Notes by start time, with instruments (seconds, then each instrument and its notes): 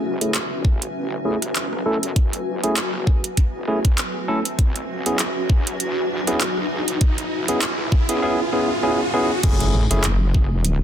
Already playing: wobble bass F#1, ambient pad C#4 F#4 B4 E5 G#5, riser
0.21 wobble bass E1, tine electric piano A3 C#4 E4 G#4, closed hi-hat
0.34 clap, closed hi-hat
0.65 wobble bass A1, kick
0.82 closed hi-hat
1.25 wobble bass A1, tine electric piano A3 C#4 E4 G#4
1.42 cross-stick, closed hi-hat
1.56 clap, closed hi-hat
1.73 cross-stick
1.86 wobble bass F#2, tine electric piano A3 C#4 E4 A4
2.03 closed hi-hat
2.16 wobble bass F#1, kick, closed hi-hat
2.33 closed hi-hat
2.64 wobble bass F#1, tine electric piano A3 C#4 E4 G#4, closed hi-hat
2.77 clap, closed hi-hat
2.94 cross-stick
3.07 kick
3.24 closed hi-hat
3.37 kick, closed hi-hat
3.55 wobble bass F#1
3.68 tine electric piano A3 C#4 E4 G#4
3.85 wobble bass F#1, kick, cross-stick, closed hi-hat
3.98 clap, closed hi-hat
4.28 tine electric piano A3 C#4 E4 A4
4.45 closed hi-hat
4.59 wobble bass C#2, ambient pad F#4, kick, closed hi-hat
4.76 closed hi-hat
5.06 wobble bass B1, tine electric piano B3 C#4 E4 G#4, closed hi-hat
5.19 clap, closed hi-hat
5.50 wobble bass E2, kick
5.67 closed hi-hat
5.80 closed hi-hat
6.10 wobble bass E2
6.27 tine electric piano B3 C#4 E4 G#4, cross-stick, closed hi-hat
6.41 clap, closed hi-hat
6.57 cross-stick
6.71 wobble bass C#2
6.88 closed hi-hat
7.01 wobble bass C#2, kick, closed hi-hat
7.18 closed hi-hat
7.48 wobble bass C#2, tine electric piano B3 C#4 E4 G#4, closed hi-hat
7.62 clap, closed hi-hat
7.79 cross-stick
7.92 kick
8.09 wobble bass C#2, tine electric piano B3 C#4 E4 G#4, closed hi-hat
8.22 tine electric piano B3 C#4 E4 G#4
8.53 tine electric piano B3 C#4 E4 G#4
8.83 tine electric piano B3 C#4 E4 G#4
9.14 tine electric piano B3 C#4 E4 G#4
9.43 wobble bass F#1, tine electric piano A3 C#4 E4 G#4, kick, closed hi-hat, crash, impact
9.59 ambient pad B4, closed hi-hat
9.74 wobble bass A1
9.91 wobble bass F#1, tine electric piano A3 C#4 E4 G#4, closed hi-hat
9.97 ambient pad E5
10.04 clap, closed hi-hat
10.35 kick
10.65 closed hi-hat